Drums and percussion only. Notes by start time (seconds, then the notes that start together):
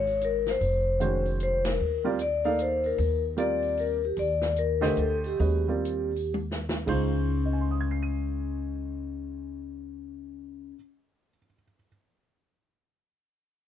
0.07 open hi-hat
0.21 closed hi-hat
0.46 snare, open hi-hat
0.61 open hi-hat
1.01 closed hi-hat
1.26 open hi-hat
1.40 closed hi-hat
1.65 snare, ride
2.19 closed hi-hat
2.44 open hi-hat
2.59 closed hi-hat
2.84 open hi-hat
2.98 open hi-hat
3.37 closed hi-hat
3.63 open hi-hat
3.77 open hi-hat
4.17 open hi-hat
4.41 snare
4.56 closed hi-hat
4.82 snare, open hi-hat
4.97 closed hi-hat
5.24 open hi-hat
5.39 open hi-hat
5.85 closed hi-hat
6.16 open hi-hat
6.34 high tom
6.51 snare
6.69 snare
6.87 kick, crash